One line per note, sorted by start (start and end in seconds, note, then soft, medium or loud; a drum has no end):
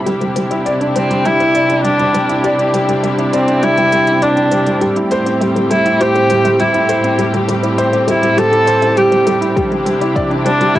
0.06 4.78 C3 medium
0.06 0.20 G3 medium
0.06 10.79 C4 medium
0.06 4.78 D4 medium
0.06 4.78 E4 medium
0.06 0.14 G4 medium
0.06 4.78 G4 medium
0.06 closed hi-hat soft
0.21 0.35 G3 medium
0.21 closed hi-hat soft
0.36 0.50 G3 medium
0.36 0.44 C5 medium
0.36 closed hi-hat medium
0.51 0.60 E4 medium
0.51 0.59 D5 medium
0.51 closed hi-hat soft
0.66 0.80 D5 medium
0.66 0.74 E5 loud
0.66 closed hi-hat soft
0.81 0.95 D4 medium
0.81 0.93 D5 medium
0.81 closed hi-hat soft
0.95 1.09 G3 medium
0.95 1.27 C4 medium
0.95 1.08 C5 loud
0.95 closed hi-hat medium
1.10 1.24 G3 medium
1.10 closed hi-hat soft
1.25 1.39 G3 medium
1.25 1.84 E4 medium
1.25 1.33 G4 medium
1.25 closed hi-hat soft
1.40 1.48 E4 medium
1.40 1.48 C5 medium
1.40 closed hi-hat soft
1.54 1.69 D5 medium
1.54 1.60 D5 medium
1.54 closed hi-hat medium
1.69 1.84 D4 medium
1.69 closed hi-hat soft
1.84 1.98 G3 medium
1.84 2.40 D4 medium
1.84 closed hi-hat soft
1.99 2.13 G3 medium
1.99 2.04 D5 medium
1.99 closed hi-hat soft
2.14 2.28 G3 medium
2.14 2.26 C5 medium
2.14 closed hi-hat medium
2.29 2.38 E4 medium
2.29 closed hi-hat soft
2.44 2.52 G4 medium
2.44 2.58 D5 medium
2.44 closed hi-hat soft
2.58 2.73 D4 medium
2.58 closed hi-hat soft
2.73 2.87 G3 medium
2.73 2.82 C5 medium
2.73 closed hi-hat medium
2.88 3.02 G3 medium
2.88 2.97 D5 medium
2.88 closed hi-hat soft
3.03 3.17 G3 medium
3.03 3.11 E5 medium
3.03 closed hi-hat soft
3.18 3.27 E4 medium
3.18 3.30 D5 medium
3.18 closed hi-hat soft
3.33 3.65 C4 medium
3.33 3.45 C5 loud
3.33 3.47 D5 medium
3.33 closed hi-hat medium
3.48 3.62 D4 medium
3.48 closed hi-hat soft
3.63 3.76 G3 medium
3.63 4.24 E4 loud
3.63 3.71 G4 medium
3.63 closed hi-hat soft
3.78 3.91 G3 medium
3.78 3.86 C5 medium
3.78 closed hi-hat soft
3.92 4.07 G3 medium
3.92 3.97 D5 medium
3.92 closed hi-hat medium
4.07 4.16 E4 medium
4.07 closed hi-hat soft
4.22 4.82 D4 medium
4.22 4.36 D5 medium
4.22 closed hi-hat soft
4.37 4.51 D4 medium
4.37 4.42 D5 medium
4.37 closed hi-hat soft
4.51 4.65 G3 medium
4.51 4.64 C5 loud
4.51 closed hi-hat medium
4.67 4.80 G3 medium
4.67 closed hi-hat soft
4.81 9.53 A2 medium
4.81 4.96 G3 medium
4.81 9.53 A3 medium
4.81 4.90 G4 medium
4.81 9.53 G4 medium
4.81 closed hi-hat soft
4.96 5.05 E4 medium
4.96 closed hi-hat soft
5.11 5.19 A4 medium
5.11 5.26 C5 loud
5.11 closed hi-hat medium
5.26 5.40 C4 medium
5.26 5.34 C5 medium
5.26 closed hi-hat soft
5.41 5.55 G3 medium
5.41 5.49 E5 loud
5.41 closed hi-hat soft
5.56 5.69 G3 medium
5.56 5.68 C5 medium
5.56 closed hi-hat soft
5.70 5.85 G3 medium
5.70 6.02 E4 medium
5.70 5.83 A4 loud
5.70 closed hi-hat medium
5.86 5.94 E4 medium
5.86 closed hi-hat soft
6.00 6.08 G4 medium
6.00 6.62 G4 loud
6.00 6.15 C5 medium
6.00 closed hi-hat soft
6.15 6.30 C4 medium
6.15 6.23 A4 medium
6.15 closed hi-hat soft
6.30 6.44 G3 medium
6.30 6.35 C5 medium
6.30 closed hi-hat medium
6.45 6.58 G3 medium
6.45 6.50 E5 medium
6.45 closed hi-hat soft
6.60 6.74 G3 medium
6.60 7.19 E4 medium
6.60 closed hi-hat soft
6.74 6.83 E4 medium
6.74 6.79 C5 medium
6.74 closed hi-hat soft
6.89 7.01 A4 loud
6.89 7.04 C5 medium
6.89 closed hi-hat medium
7.04 7.18 C4 medium
7.04 closed hi-hat soft
7.18 7.32 G3 medium
7.18 7.27 G4 medium
7.18 closed hi-hat soft
7.34 7.47 G3 medium
7.34 closed hi-hat soft
7.48 7.63 G3 medium
7.48 7.57 A4 medium
7.48 closed hi-hat medium
7.63 7.72 E4 medium
7.63 7.71 C5 medium
7.63 closed hi-hat soft
7.78 7.92 C5 medium
7.78 7.86 E5 medium
7.78 closed hi-hat soft
7.93 8.07 C4 medium
7.93 8.05 C5 medium
7.93 closed hi-hat soft
8.07 8.21 G3 medium
8.07 8.40 E4 medium
8.07 8.20 A4 loud
8.07 closed hi-hat medium
8.22 8.35 G3 medium
8.22 closed hi-hat soft
8.37 8.52 G3 medium
8.37 8.46 G4 medium
8.37 8.99 A4 loud
8.37 closed hi-hat soft
8.52 8.61 E4 medium
8.52 8.60 A4 medium
8.52 closed hi-hat soft
8.67 8.72 C5 medium
8.67 8.82 C5 medium
8.67 closed hi-hat medium
8.82 8.96 C4 medium
8.82 8.87 E5 medium
8.82 closed hi-hat soft
8.97 9.10 G3 medium
8.97 9.57 G4 medium
8.97 closed hi-hat soft
9.12 9.25 G3 medium
9.12 9.17 C5 medium
9.12 closed hi-hat soft
9.26 9.41 G3 medium
9.26 9.39 A4 medium
9.26 closed hi-hat medium
9.41 9.50 E4 medium
9.41 closed hi-hat soft
9.56 10.79 C3 medium
9.56 9.70 G3 medium
9.56 10.79 D4 medium
9.56 10.79 E4 medium
9.56 10.79 G4 medium
9.56 9.65 G4 medium
9.56 kick medium
9.56 closed hi-hat soft
9.71 9.84 G3 medium
9.71 closed hi-hat soft
9.86 10.00 G3 medium
9.86 9.94 C5 medium
9.86 closed hi-hat medium
10.01 10.10 E4 medium
10.01 10.09 D5 medium
10.01 closed hi-hat soft
10.15 10.30 D5 loud
10.15 10.24 E5 medium
10.15 kick loud
10.15 closed hi-hat soft
10.30 10.45 D4 medium
10.30 10.43 D5 medium
10.30 closed hi-hat soft
10.45 10.59 G3 medium
10.45 10.76 D4 medium
10.45 10.58 C5 loud
10.45 closed hi-hat medium
10.60 10.74 G3 medium
10.60 closed hi-hat soft
10.75 10.79 G3 medium
10.75 10.79 E4 loud
10.75 10.79 G4 medium
10.75 kick loud
10.75 closed hi-hat soft